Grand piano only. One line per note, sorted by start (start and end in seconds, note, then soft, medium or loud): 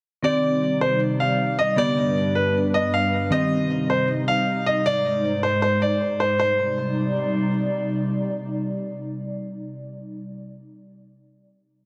0.24 0.78 D5 medium
0.81 0.99 C5 medium
1.20 1.56 F5 medium
1.59 1.76 D#5 medium
1.78 2.32 D5 loud
2.35 2.53 B4 medium
2.74 2.92 D#5 medium
2.94 3.30 F5 medium
3.32 3.86 D#5 medium
3.90 4.07 C5 medium
4.28 4.64 F5 medium
4.66 4.84 D#5 medium
4.86 5.40 D5 loud
5.43 5.61 C5 medium
5.62 5.80 C5 medium
5.82 6.18 D5 medium
6.20 6.38 C5 medium
6.39 7.51 C5 medium